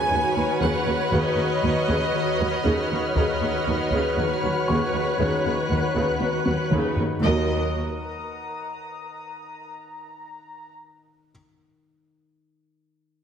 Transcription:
0.00 2.63 D#4 soft
0.00 3.12 F#4 soft
0.00 3.14 B4 soft
0.00 3.14 B4 medium
0.00 3.11 C#5 soft
0.00 3.15 C#5 medium
0.00 3.13 F#5 medium
0.00 0.57 G#5 medium
0.00 6.68 B5 soft
0.10 0.19 D#2 soft
0.10 0.19 C#3 soft
0.10 0.60 D#3 soft
0.10 5.05 F6 soft
0.36 0.44 D#2 soft
0.36 0.44 F#3 soft
0.61 0.69 D#2 medium
0.61 0.85 C#3 soft
0.61 1.11 D#3 soft
0.61 1.13 F#5 medium
0.87 0.95 D#2 soft
0.87 0.95 C#3 soft
1.12 1.20 D#2 soft
1.12 1.21 D#2 soft
1.12 1.36 C#3 soft
1.12 1.62 D#3 soft
1.12 3.14 D#5 medium
1.37 1.45 D#2 soft
1.37 1.46 C#3 soft
1.63 1.71 D#2 soft
1.63 1.72 D#2 soft
1.63 2.12 D#3 soft
1.63 1.71 F#3 soft
1.88 1.96 D#2 medium
1.88 2.12 C#3 soft
1.88 taiko medium
2.14 3.14 D#3 soft
2.39 2.48 D#2 soft
2.39 2.47 F#3 soft
2.64 2.73 D#2 medium
2.64 2.73 D#2 soft
2.64 2.88 C#3 soft
2.64 3.64 D#4 soft
2.90 2.99 D#2 soft
2.90 2.98 C#3 soft
3.15 3.23 D#2 soft
3.15 3.24 D#2 soft
3.15 3.40 C#3 soft
3.15 4.16 D#3 soft
3.15 6.99 F#4 soft
3.15 6.98 B4 soft
3.15 7.19 B4 soft
3.15 6.98 C#5 soft
3.15 7.19 C#5 medium
3.15 4.15 D#5 medium
3.15 7.19 F#5 medium
3.15 taiko medium
3.41 3.49 D#2 soft
3.41 3.50 C#3 soft
3.66 3.75 D#2 soft
3.66 3.76 F#3 soft
3.66 6.72 D#4 soft
3.91 4.00 D#2 soft
3.91 4.17 C#3 soft
3.91 taiko medium
4.17 4.25 D#2 soft
4.17 4.26 D#2 soft
4.17 4.27 C#3 soft
4.17 4.67 D#3 soft
4.17 6.72 C#5 soft
4.43 4.51 D#2 soft
4.43 4.53 F#3 soft
4.68 4.76 D#2 soft
4.68 4.93 C#3 soft
4.68 5.18 D#3 soft
4.68 7.18 C#6 soft
4.94 5.02 D#2 soft
4.94 5.02 C#3 soft
5.05 6.68 F#6 soft
5.19 5.27 D#2 soft
5.19 5.43 C#3 soft
5.19 5.70 D#3 soft
5.45 5.53 D#2 soft
5.45 5.53 C#3 soft
5.70 5.78 D#2 soft
5.70 5.79 D#2 soft
5.70 6.21 D#3 soft
5.70 5.79 F#3 soft
5.95 6.04 D#2 soft
5.95 6.19 C#3 soft
5.95 taiko medium
6.20 7.27 D#3 soft
6.20 taiko high medium
6.46 6.55 D#2 soft
6.46 6.55 F#3 soft
6.46 taiko high medium
6.71 6.80 D#2 soft
6.71 6.96 C#3 soft
6.71 10.63 D#4 soft
6.71 taiko mid medium
6.96 7.06 D#2 soft
6.96 7.06 C#3 soft
6.96 taiko low medium
7.22 7.80 D#2 medium
7.22 7.80 F#3 soft
7.22 7.80 F#4 soft
7.22 7.80 A#4 soft
7.22 7.79 D#5 medium
7.22 7.80 D#5 soft
7.22 10.76 A#5 soft
7.22 9.74 D#6 soft

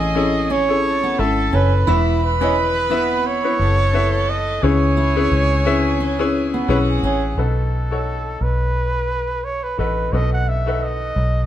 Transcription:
0.00 1.15 A1 loud
0.00 0.12 A2 medium
0.00 0.15 C#4 medium
0.00 0.15 E4 medium
0.00 0.16 G#4 medium
0.00 0.81 G#4 medium
0.00 0.16 A4 medium
0.00 0.16 C#5 medium
0.00 0.53 D#5 loud
0.00 0.81 G#5 medium
0.15 0.60 C#4 medium
0.15 0.60 E4 medium
0.15 0.60 G#4 medium
0.15 0.61 A4 medium
0.15 0.61 C#5 medium
0.50 0.68 C#4 medium
0.50 1.21 C#5 loud
0.69 1.11 C#4 medium
0.69 1.12 E4 medium
0.69 1.12 G#4 medium
0.69 1.12 A4 medium
0.69 1.12 C#5 medium
0.85 1.86 A4 medium
0.85 1.86 A5 medium
1.03 1.18 B3 medium
1.18 1.51 G#1 loud
1.18 1.78 C#4 medium
1.18 1.78 E4 medium
1.18 1.78 A4 medium
1.18 1.56 A4 loud
1.18 1.79 E5 medium
1.53 1.85 F#1 medium
1.53 1.71 C#4 medium
1.53 1.97 B4 medium
1.87 3.40 E1 loud
1.87 2.87 E3 medium
1.87 2.32 B3 medium
1.87 2.20 E4 loud
1.87 2.32 E4 medium
1.87 2.32 F#4 medium
1.87 3.56 B4 medium
1.87 2.33 B4 medium
1.87 2.33 E5 medium
1.87 3.56 B5 medium
2.24 3.28 B4 loud
2.40 2.83 B3 medium
2.40 2.56 C#4 medium
2.40 2.84 E4 medium
2.40 2.84 F#4 medium
2.40 2.84 B4 medium
2.40 2.84 D#5 medium
2.90 3.35 B3 medium
2.90 3.55 B3 medium
2.90 3.35 E4 medium
2.90 3.35 F#4 medium
2.90 3.36 B4 medium
2.90 3.36 E5 medium
3.27 4.31 C#5 loud
3.44 3.87 B3 medium
3.44 3.87 E4 medium
3.44 3.87 F#4 medium
3.44 3.87 B4 medium
3.44 3.87 C#5 medium
3.59 4.59 F#1 medium
3.59 4.61 A4 medium
3.59 4.61 A5 medium
3.93 4.53 B3 medium
3.93 4.53 E4 medium
3.93 4.53 F#4 medium
3.93 4.54 B4 medium
3.93 4.54 E5 medium
4.29 4.65 D#5 medium
4.62 5.28 C#2 loud
4.62 5.62 C#3 medium
4.62 5.07 C#4 medium
4.62 5.07 E4 medium
4.62 6.65 G#4 medium
4.62 5.08 G#4 medium
4.62 5.08 B4 medium
4.62 6.69 C#5 loud
4.62 5.08 C#5 medium
4.62 6.65 G#5 medium
4.97 5.15 E4 medium
5.16 5.58 C#4 medium
5.16 5.59 E4 medium
5.16 5.59 G#4 medium
5.16 5.59 B4 medium
5.16 5.59 C#5 medium
5.32 6.65 C#2 medium
5.65 6.10 C#4 medium
5.65 6.10 E4 medium
5.65 6.11 G#4 medium
5.65 6.11 B4 medium
5.65 6.11 E5 loud
6.00 6.19 C#4 medium
6.19 6.62 C#4 medium
6.19 6.62 E4 medium
6.19 6.62 G#4 medium
6.19 6.62 B4 medium
6.19 6.63 C#5 medium
6.54 6.68 B3 medium
6.68 7.01 B1 medium
6.68 7.28 C#4 medium
6.68 7.28 E4 medium
6.68 7.36 F#4 medium
6.68 7.29 G#4 medium
6.68 7.29 B4 medium
6.68 6.78 B4 medium
6.68 7.29 C#5 medium
6.68 7.36 F#5 medium
6.90 7.03 G#4 medium
7.03 7.35 A1 medium
7.03 7.22 C#4 medium
7.03 7.40 G#4 medium
7.37 8.37 B1 medium
7.37 8.37 B2 medium
7.37 7.82 D#4 medium
7.37 7.82 F#4 medium
7.37 7.83 A4 medium
7.37 8.43 A4 medium
7.37 7.83 B4 medium
7.91 9.06 D#4 medium
7.91 9.06 F#4 medium
7.91 9.07 A4 medium
7.91 9.07 C#5 medium
8.41 9.75 B1 medium
8.41 9.46 B4 medium
9.44 9.65 C#5 medium
9.63 9.79 B4 medium
9.78 10.11 A1 medium
9.78 10.08 D#4 medium
9.78 10.08 F#4 medium
9.78 10.09 A4 medium
9.78 10.15 B4 medium
9.78 10.09 B4 medium
10.12 11.12 B1 medium
10.12 11.13 B2 soft
10.12 10.58 D#4 medium
10.12 10.58 F#4 medium
10.12 10.58 A4 medium
10.12 10.58 B4 medium
10.12 10.32 D#5 medium
10.33 10.50 F#5 medium
10.49 10.84 E5 medium
10.66 11.39 D#4 medium
10.66 11.39 F#4 medium
10.66 11.40 A4 medium
10.66 11.40 B4 medium
10.83 11.46 D#5 medium
11.16 11.46 B1 medium

